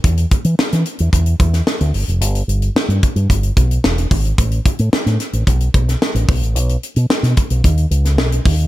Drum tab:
HH |xxxx-xxxxxxx-xox|xxxx-xxxxxxx-xox|xxxx-xxxxxxx-xox|xxxx-xxxxxxx-xox|
SD |----oo-----oo---|----o-------o---|----ooo----oo---|----oo-----oo---|
BD |o-o-----o-o-----|------o-o-o---o-|o-o-----o-o---o-|------o-o-----o-|